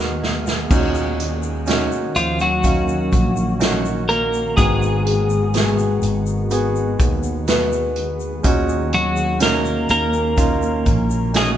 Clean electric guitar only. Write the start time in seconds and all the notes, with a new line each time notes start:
2.16 F3 F4
2.41 F#3 F#4
4.09 A#3 A#4
4.57 G#3 G#4
8.94 F#3 F#4
9.42 A#3 A#4
9.90 A#3 A#4
11.36 G#3 G#4